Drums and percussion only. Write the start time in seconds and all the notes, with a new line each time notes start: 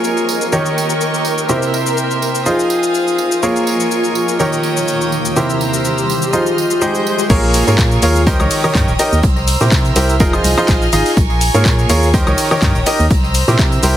0.04 tambourine, shaker
0.17 tambourine, shaker
0.29 tambourine
0.41 tambourine, shaker
0.52 tambourine, shaker
0.66 tambourine, shaker
0.78 tambourine
0.90 tambourine, shaker
1.01 tambourine, shaker
1.14 tambourine, shaker
1.25 tambourine
1.38 tambourine, shaker
1.49 tambourine, shaker
1.63 tambourine, shaker
1.74 tambourine
1.86 tambourine, shaker
1.97 tambourine, shaker
2.11 tambourine, shaker
2.22 tambourine
2.35 tambourine, shaker
2.46 tambourine, shaker
2.59 tambourine, shaker
2.70 tambourine
2.83 tambourine, shaker
2.95 tambourine, shaker
3.07 tambourine, shaker
3.18 tambourine
3.32 tambourine, shaker
3.43 tambourine, shaker
3.56 tambourine, shaker
3.67 tambourine
3.80 tambourine, shaker
3.91 tambourine, shaker
4.03 tambourine, shaker
4.15 tambourine
4.28 tambourine, shaker
4.40 tambourine, shaker
4.52 tambourine, shaker
4.63 tambourine
4.77 tambourine, shaker
4.88 tambourine, shaker
5.01 tambourine, shaker
5.12 tambourine
5.25 tambourine, shaker
5.36 tambourine, shaker
5.50 tambourine, shaker
5.61 tambourine
5.74 tambourine, shaker
5.85 tambourine, shaker
5.98 tambourine, shaker
6.10 tambourine
6.22 tambourine, shaker
6.33 tambourine, shaker
6.46 tambourine, shaker
6.58 tambourine
6.71 tambourine, shaker
6.82 tambourine, shaker
6.95 tambourine, shaker
7.07 tambourine
7.19 tambourine, shaker
7.30 kick, closed hi-hat, crash, tambourine, shaker
7.43 tambourine
7.54 closed hi-hat, open hi-hat, tambourine, shaker
7.67 closed hi-hat, tambourine, shaker
7.78 kick, snare, clap, closed hi-hat, tambourine, shaker
7.92 tambourine, shaker
8.02 closed hi-hat, open hi-hat, tambourine, shaker
8.16 tambourine, shaker
8.27 kick, closed hi-hat, tambourine, shaker
8.40 tambourine, high woodblock, shaker
8.51 open hi-hat, tambourine, shaker
8.64 tambourine, high woodblock, shaker
8.75 kick, snare, clap, closed hi-hat, tambourine, shaker
8.88 tambourine, shaker
8.99 snare, closed hi-hat, open hi-hat, tambourine, shaker
9.12 tambourine, shaker
9.23 kick, closed hi-hat, tambourine, shaker
9.36 tambourine
9.48 closed hi-hat, open hi-hat, tambourine, shaker
9.60 snare, tambourine, shaker
9.72 kick, snare, clap, closed hi-hat, tambourine, shaker
9.85 closed hi-hat, tambourine, shaker
9.96 snare, closed hi-hat, open hi-hat, tambourine, shaker
10.09 tambourine, shaker
10.20 kick, closed hi-hat, tambourine, shaker
10.33 tambourine, high woodblock, shaker
10.44 closed hi-hat, open hi-hat, tambourine, shaker
10.58 tambourine, high woodblock, shaker
10.68 kick, snare, clap, closed hi-hat, tambourine, shaker
10.82 tambourine, shaker
10.93 snare, closed hi-hat, open hi-hat, tambourine, shaker
11.06 snare, open hi-hat, tambourine, shaker
11.17 kick, closed hi-hat, tambourine, shaker
11.30 tambourine
11.41 closed hi-hat, open hi-hat, tambourine, shaker
11.54 closed hi-hat, tambourine, shaker
11.65 kick, snare, clap, closed hi-hat, tambourine, shaker
11.79 tambourine, shaker
11.90 closed hi-hat, open hi-hat, tambourine, shaker
12.03 tambourine, shaker
12.14 kick, closed hi-hat, tambourine, shaker
12.27 tambourine, high woodblock, shaker
12.38 open hi-hat, tambourine, shaker
12.51 tambourine, high woodblock, shaker
12.62 kick, snare, clap, closed hi-hat, tambourine, shaker
12.75 tambourine, shaker
12.86 snare, closed hi-hat, open hi-hat, tambourine, shaker
13.00 tambourine, shaker
13.11 kick, closed hi-hat, tambourine, shaker
13.24 tambourine
13.34 closed hi-hat, open hi-hat, tambourine, shaker
13.48 snare, tambourine, shaker
13.59 kick, snare, clap, closed hi-hat, tambourine, shaker
13.72 closed hi-hat, tambourine, shaker
13.83 snare, closed hi-hat, open hi-hat, tambourine, shaker